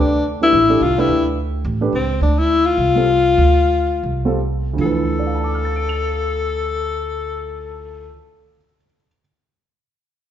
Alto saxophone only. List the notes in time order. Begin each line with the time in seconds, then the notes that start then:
0.00 D4
0.43 E4
0.82 F4
1.00 E4
1.95 C4
2.23 D4
2.39 E4
2.66 F4
4.81 A4